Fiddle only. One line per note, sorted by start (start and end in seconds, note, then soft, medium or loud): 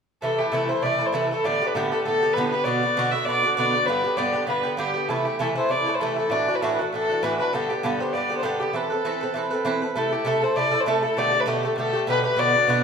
0.22 0.40 A4 medium
0.39 0.53 G4 medium
0.52 0.70 A4 medium
0.69 0.84 C5 medium
0.83 1.08 D5 medium
1.06 1.16 C5 medium
1.14 1.31 A4 medium
1.31 1.47 A4 medium
1.45 1.69 D5 medium
1.67 1.76 B4 medium
1.75 1.90 A4 medium
1.91 2.03 A4 medium
2.04 2.35 A4 loud
2.34 2.49 B4 medium
2.50 2.65 B4 medium
2.64 3.13 D5 loud
3.12 3.27 E5 medium
3.25 3.56 D5 loud
3.56 3.88 D5 loud
3.86 4.19 B4 loud
4.17 4.48 D5 medium
4.48 4.77 B4 medium
4.79 5.10 G4 medium
5.09 5.27 A4 medium
5.25 5.40 G4 medium
5.40 5.48 A4 medium
5.57 5.73 C5 medium
5.71 5.96 D5 medium
5.95 6.02 C5 medium
6.00 6.17 A4 medium
6.17 6.33 A4 medium
6.31 6.57 D5 medium
6.56 6.63 B4 medium
6.61 6.74 A4 medium
6.74 6.80 B4 medium
6.78 6.91 A4 medium
6.92 7.24 A4 loud
7.23 7.38 B4 medium
7.39 7.55 B4 medium
7.54 7.71 A4 medium
7.70 7.86 G4 medium
7.84 8.02 A4 medium
8.01 8.15 C5 medium
8.13 8.37 D5 medium
8.37 8.44 C5 medium
8.43 8.61 A4 medium
8.60 8.75 G4 medium
8.74 9.65 A4 medium
9.95 10.14 A4 medium
10.13 10.27 G4 medium
10.26 10.45 A4 medium
10.43 10.58 C5 medium
10.56 10.82 D5 loud
10.80 10.87 C5 medium
10.88 11.03 A4 medium
11.04 11.20 A4 medium
11.18 11.42 D5 loud
11.41 11.49 B4 medium
11.48 11.63 A4 medium
11.64 11.76 A4 medium
11.78 12.06 A4 medium
12.09 12.24 B4 loud
12.25 12.41 B4 loud
12.39 12.84 D5 loud